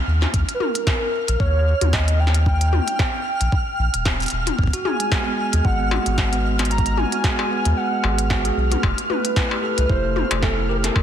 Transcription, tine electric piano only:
4.59 4.71 B3 medium
4.73 4.79 F#4 medium
4.85 4.99 G#4 loud
5.00 5.10 G#3 medium
5.12 5.26 B3 loud
5.27 5.38 G#3 medium
5.53 5.59 G#3 medium
5.65 5.72 G#3 medium
5.80 5.90 B3 medium
5.91 5.99 F#4 medium
6.06 6.17 G#4 loud
6.18 6.30 G#3 medium
6.33 6.44 B3 loud
6.44 6.59 G#3 medium
6.71 6.79 G#3 medium
6.86 6.92 G#3 medium
6.97 7.10 B3 medium
7.12 7.18 F#4 loud
7.24 7.38 G#4 loud
7.39 7.49 G#3 medium
7.51 7.65 B3 loud
7.65 7.77 G#3 medium
7.92 7.98 G#3 medium
8.04 8.11 G#3 medium
8.19 8.28 B3 medium
8.30 8.38 F#4 loud
8.45 8.56 G#4 loud
8.57 8.69 G#3 medium
8.72 8.83 B3 loud
8.83 8.97 A3 medium
9.10 9.17 A3 medium
9.25 9.31 A3 medium
9.36 9.49 E4 medium
9.51 9.57 G4 loud
9.63 9.77 A4 loud
9.78 9.88 A3 medium
9.89 10.04 E4 loud
10.04 10.15 A3 medium
10.31 10.37 A3 medium
10.43 10.50 A3 medium
10.57 10.67 E4 medium
10.69 10.77 G4 loud
10.84 10.95 A4 loud
10.96 11.03 A#3 medium

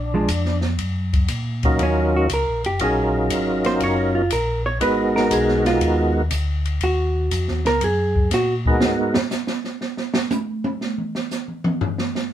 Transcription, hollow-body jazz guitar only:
0.14 0.28 F3 medium
0.14 0.28 G#3 medium
0.14 0.28 D4 medium
1.83 2.15 C#4 medium
2.16 2.31 F#4 medium
2.34 2.65 A#4 medium
2.66 2.80 G4 medium
2.84 3.63 G#4 medium
3.66 3.81 C5 medium
3.83 4.16 C#5 medium
4.15 4.30 F4 medium
4.33 4.65 A#4 medium
4.66 4.81 C#5 medium
4.83 5.15 B4 medium
5.16 5.31 A#4 medium
5.33 5.66 G#4 medium
5.67 6.13 F4 medium
6.84 7.63 F#4 medium
7.67 7.82 A#4 loud
7.84 8.30 G#4 medium
8.34 8.54 F#4 medium

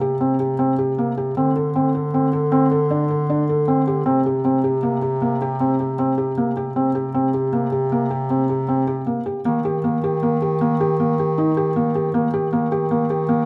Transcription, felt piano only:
0.01 0.14 G4 medium
0.21 0.34 C4 medium
0.40 0.53 G4 medium
0.59 0.72 C4 medium
0.79 0.91 G4 medium
0.98 1.11 A#3 medium
1.17 1.30 G4 medium
1.37 1.50 C4 medium
1.56 1.69 A4 medium
1.76 1.88 C4 medium
1.95 2.07 A4 medium
2.14 2.27 C4 medium
2.33 2.46 A4 medium
2.52 2.65 C4 medium
2.71 2.84 A4 medium
2.91 3.04 D4 medium
3.10 3.23 A4 medium
3.30 3.42 D4 medium
3.49 3.62 A4 medium
3.68 3.81 C4 medium
3.88 4.00 G4 medium
4.06 4.19 C4 medium
4.26 4.39 G4 medium
4.45 4.58 C4 medium
4.64 4.77 G4 medium
4.83 4.96 A#3 medium
5.02 5.15 G4 medium
5.22 5.35 A#3 medium
5.42 5.54 G4 medium
5.60 5.73 C4 medium
5.80 5.93 G4 medium
5.99 6.12 C4 medium
6.18 6.31 G4 medium
6.37 6.50 A#3 medium
6.57 6.70 G4 medium
6.76 6.89 C4 medium
6.95 7.08 G4 medium
7.14 7.27 C4 medium
7.34 7.47 G4 medium
7.53 7.66 A#3 medium
7.72 7.85 G4 medium
7.92 8.05 A#3 medium
8.11 8.24 G4 medium
8.30 8.43 C4 medium
8.49 8.62 G4 medium
8.68 8.81 C4 medium
8.87 9.01 G4 medium
9.06 9.20 A#3 medium
9.26 9.39 G4 medium
9.45 9.58 A#3 medium
9.65 9.78 G4 medium
9.84 9.97 A#3 medium
10.04 10.16 G4 medium
10.23 10.36 A#3 medium
10.42 10.55 G4 medium
10.61 10.74 A#3 medium
10.80 10.93 G4 medium
11.00 11.13 A#3 medium
11.20 11.32 G4 medium
11.38 11.51 D#4 medium
11.57 11.70 G4 medium
11.76 11.89 A#3 medium
11.95 12.08 G4 medium
12.14 12.27 A#3 medium
12.34 12.47 G4 medium
12.53 12.66 A#3 medium
12.72 12.85 G4 medium
12.91 13.04 A#3 medium
13.10 13.23 G4 medium
13.29 13.42 A#3 medium

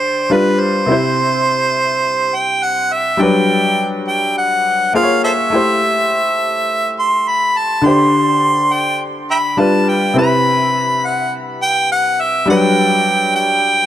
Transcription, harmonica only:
0.00 0.34 C5 medium
0.33 0.62 B4 medium
0.61 2.37 C5 medium
2.36 2.65 G5 medium
2.64 2.95 F#5 medium
2.93 3.23 E5 medium
3.21 3.91 G5 loud
4.08 4.35 G5 medium
4.38 4.91 F#5 medium
4.96 5.22 F5 medium
5.24 5.31 A4 medium
5.24 5.32 C5 medium
5.24 6.94 E5 loud
6.99 7.30 C6 medium
7.28 7.59 B5 medium
7.58 7.87 A5 medium
7.86 8.75 C6 loud
8.73 9.01 G5 medium
9.31 9.38 E5 medium
9.31 9.38 G5 medium
9.31 9.60 B5 loud
9.59 9.90 A5 loud
9.89 10.17 G5 medium
10.18 11.08 B5 loud
11.07 11.34 F#5 medium
11.62 11.89 G5 loud
11.92 12.23 F#5 loud
12.21 12.49 E5 medium
12.50 13.32 G5 loud
13.36 13.86 G5 loud

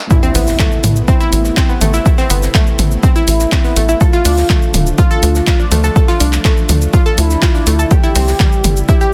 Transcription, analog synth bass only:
0.35 0.53 A1 loud
0.84 1.02 A2 medium
1.32 1.51 A1 loud
1.81 2.00 A1 loud
2.30 2.49 G1 loud
2.79 2.97 A1 medium
3.28 3.46 A1 medium
3.76 3.95 A1 loud
4.25 4.44 D2 loud
4.74 4.92 D1 loud
5.23 5.41 D2 loud
5.72 5.90 D2 loud
6.20 6.39 C2 loud
6.69 6.88 D2 medium
7.18 7.36 D2 loud
7.67 7.85 D2 medium
8.15 8.34 C2 loud
8.64 8.83 G1 medium

